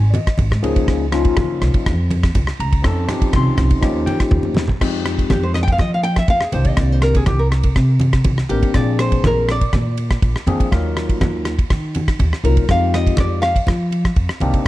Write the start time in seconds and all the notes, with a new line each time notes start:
Already playing: G#1 G#5
0.10 D5, high conga
0.14 D#5, ride
0.27 muted upright bass stroke, kick, cross-stick, ride
0.38 G#1, kick, ride, high conga
0.51 G#2, cross-stick
0.62 C#2 F3 A#3 C#4 D#4 G#4, ride
0.76 kick, ride
0.88 kick, cross-stick, ride, muted conga
1.12 F3 A#3 C#4 D#4 F4, cross-stick, ride, muted conga
1.25 kick, ride
1.37 C#3, kick, cross-stick, ride, high conga
1.61 C#2, cross-stick, ride, muted conga
1.74 muted upright bass stroke, kick, ride
1.86 F2, kick, cross-stick, ride, muted conga
2.11 ride, high conga
2.23 kick, cross-stick, ride
2.35 C#2, kick, ride, high conga
2.47 cross-stick
2.60 C#2 A#5, ride
2.73 kick, ride
2.82 F2 F3 C4 C#4 D#4 A4, kick, cross-stick, ride, muted conga
2.87 A5
3.07 F3 C4 C#4 D#4 G4, cross-stick, ride, muted conga, low conga
3.22 kick, ride
3.33 C2 C6, kick, cross-stick, ride, high conga
3.57 C2, cross-stick, ride, low conga
3.70 muted upright bass stroke, kick, ride
3.81 D#2 F3 A#3 C#4 D#4 G4, kick, cross-stick, ride, muted conga
4.06 G5, ride, high conga
4.20 muted upright bass stroke, kick, cross-stick, ride
4.31 D#2, kick, high tom, high conga
4.43 D#2, high conga
4.55 snare, low conga
4.68 kick, low conga
4.80 F2 F3 G#3 C4 D#4 G4, kick, cross-stick, crash, muted conga
5.06 cross-stick, ride
5.19 kick, ride
5.30 F2 G4, kick, cross-stick, ride, muted conga, high conga
5.43 C5
5.54 D#5, cross-stick, ride
5.63 G5
5.68 kick, ride
5.72 F5
5.79 F3 D#5, kick, cross-stick, ride, muted conga, high conga
5.94 F5
6.03 G5, ride, muted conga
6.16 E5, kick, cross-stick, ride
6.28 F2 F5, kick, ride
6.41 G#4, cross-stick
6.52 C2 D#3 A#3 C4 D4 G4 C5, ride, high conga
6.65 D#5, kick, ride
6.77 C2 D5, kick, cross-stick, ride, muted conga
6.92 C5
7.02 A#4, cross-stick, ride
7.15 G#4, kick, ride
7.26 C2 G4, kick, cross-stick, ride, muted conga, high conga
7.39 A#4
7.52 cross-stick, ride
7.63 kick, ride
7.75 C3, kick, cross-stick, ride, muted conga
8.00 ride, high conga
8.13 kick, cross-stick, ride
8.24 C2, kick, ride, high conga
8.38 cross-stick
8.49 A1 D#3 A#3 C4 D4 G4 A#4, ride
8.63 kick, ride
8.74 A#1 F3 A#3 C4 D4 G#4 D5, kick, cross-stick, ride, muted conga
8.99 C5, cross-stick, ride
9.12 kick, ride
9.24 A#1 A#4, kick, cross-stick, ride, muted conga, high conga
9.49 D5, cross-stick, ride
9.61 kick, ride
9.73 A#2, kick, cross-stick, ride, muted conga, high conga
9.97 ride, muted conga
10.11 kick, cross-stick, ride
10.22 A#1, kick, ride
10.36 cross-stick
10.47 F2 F3 A#3 C4 D4 G#4, ride, high conga
10.60 kick, ride
10.71 D#2 F#3 A#3 D#4 F4 A#4, kick, cross-stick, ride, muted conga
10.97 cross-stick, ride
11.09 kick, ride
11.21 D#2, kick, cross-stick, ride, muted conga, high conga
11.45 cross-stick, ride
11.59 kick, ride
11.70 D#3, kick, cross-stick, ride, muted conga
11.95 ride, muted conga, high conga
12.08 kick, cross-stick, ride
12.19 D#2, kick, ride, high conga
12.33 cross-stick
12.44 C2 F#3 A#3 D#4 F4 A#4, ride
12.57 kick, ride
12.68 F2 G#3 C4 D#4 F4 G4 F5, kick, cross-stick, ride, muted conga
12.94 D#5, cross-stick, ride
13.07 kick, ride
13.17 F2 D5, kick, cross-stick, ride, muted conga, high conga
13.42 F5, cross-stick, ride
13.56 kick, ride
13.67 F3, kick, cross-stick, ride, muted conga, high conga
13.91 ride, muted conga
14.05 kick, cross-stick, ride
14.16 F2, kick, ride
14.29 cross-stick
14.40 C2 A#3 C4 D4 D#4 G4, ride, high conga
14.54 kick, ride
14.65 muted conga